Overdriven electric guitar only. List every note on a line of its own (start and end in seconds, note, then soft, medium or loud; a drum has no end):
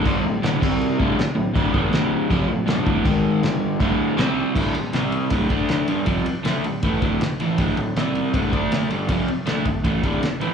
0.04 0.23 G2 loud
0.04 0.23 D3 loud
0.04 0.24 G3 loud
0.25 0.39 D2 medium
0.25 0.39 A2 medium
0.42 0.60 D2 medium
0.42 0.61 A2 medium
0.42 0.61 D3 medium
0.61 0.98 C3 loud
0.61 0.98 G3 medium
0.61 0.99 C4 medium
0.99 1.17 D2 loud
0.99 1.18 A2 loud
0.99 1.18 D3 loud
1.18 muted overdriven electric guitar stroke medium
1.35 1.51 D2 medium
1.35 1.51 A2 medium
1.54 1.72 D2 loud
1.54 1.73 A2 loud
1.54 1.73 D3 loud
1.72 1.90 G#2 medium
1.72 1.91 D#3 medium
1.72 1.92 G#3 loud
1.91 2.29 D2 medium
1.91 2.29 A2 loud
1.91 2.30 D3 medium
2.29 2.48 F2 medium
2.29 2.48 C3 loud
2.29 2.49 F3 loud
2.48 2.64 D2 medium
2.48 2.64 A2 medium
2.66 2.84 G2 medium
2.66 2.85 D3 medium
2.66 2.86 G3 medium
2.84 3.04 D2 medium
2.84 3.04 A2 medium
2.84 3.05 D3 loud
3.04 3.42 G#2 loud
3.04 3.43 D#3 loud
3.04 3.44 G#3 loud
3.42 3.79 G2 loud
3.42 3.80 D3 medium
3.42 3.81 G3 medium
3.80 4.17 D2 loud
3.80 4.18 A2 loud
3.80 4.19 D3 loud
4.17 4.54 C3 medium
4.17 4.55 G3 loud
4.17 4.56 C4 medium
4.54 4.74 D2 loud
4.54 4.74 A2 medium
4.54 4.75 D3 loud
4.75 4.90 D2 medium
4.75 4.90 A2 medium
4.93 5.30 C3 medium
4.93 5.31 G3 medium
4.93 5.32 C4 loud
5.31 5.50 D2 medium
5.31 5.49 A2 loud
5.31 5.48 D3 loud
5.50 5.87 D3 medium
5.50 5.87 A3 loud
5.50 5.88 D4 loud
5.88 6.06 G2 medium
5.88 6.07 D3 medium
5.88 6.07 G3 medium
6.06 6.25 F2 medium
6.06 6.26 C3 loud
6.06 6.26 F3 loud
6.25 muted overdriven electric guitar stroke medium
6.44 6.63 D3 medium
6.44 6.64 A3 medium
6.44 6.64 D4 medium
6.65 6.80 D2 medium
6.65 6.80 A2 medium
6.83 7.01 A2 medium
6.83 7.02 E3 medium
6.83 7.02 A3 loud
7.02 7.20 D2 medium
7.02 7.21 A2 loud
7.02 7.21 D3 medium
7.21 muted overdriven electric guitar stroke medium
7.41 7.59 A2 medium
7.41 7.59 E3 loud
7.41 7.59 A3 medium
7.59 7.77 D2 loud
7.59 7.77 A2 loud
7.59 7.78 D3 loud
7.78 7.93 D2 medium
7.78 7.93 A2 medium
7.96 8.33 C3 medium
7.96 8.33 G3 medium
7.96 8.34 C4 medium
8.33 8.52 D2 medium
8.33 8.51 A2 loud
8.33 8.51 D3 loud
8.52 8.89 D3 medium
8.52 8.90 A3 medium
8.52 8.90 D4 medium
8.89 9.08 G2 medium
8.89 9.09 D3 medium
8.89 9.09 G3 medium
9.08 9.27 F2 loud
9.08 9.28 C3 loud
9.08 9.28 F3 loud
9.28 muted overdriven electric guitar stroke medium
9.46 9.65 D3 medium
9.46 9.65 A3 medium
9.46 9.66 D4 loud
9.66 9.81 D2 medium
9.66 9.81 A2 medium
9.84 10.02 A2 medium
9.84 10.03 E3 medium
9.84 10.03 A3 loud
10.02 10.20 D2 medium
10.02 10.22 A2 medium
10.02 10.22 D3 loud
10.22 muted overdriven electric guitar stroke medium
10.41 10.54 A2 medium
10.41 10.54 E3 medium
10.41 10.54 A3 medium